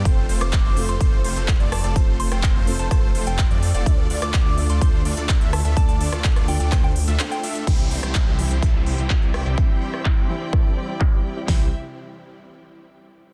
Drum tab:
CC |----------------|----------------|----------------|----------------|
HH |x-oxx-oxx-oxxxox|x-oxx-oxx-oxxxox|x-oxx-oxx-oxxxox|xxoxxxoxx-oxxxox|
CP |----x-------x---|----x-------x---|----x-------x---|----x---x---x---|
SD |---r----------r-|---r----r-------|---r----------r-|---r-r--r-------|
BD |o---o---o---o---|o---o---o---o---|o---o---o---o---|o---o---o-------|

CC |x---------------|----------------|----------------|
HH |x-oxx-oxx-oxxxox|x-oxx-ox--o---o-|o---------------|
CP |----x-------x---|----x-------x---|----------------|
SD |---r----------r-|---r----r-------|o---------------|
BD |o---o---o---o---|o---o---o---o---|o---------------|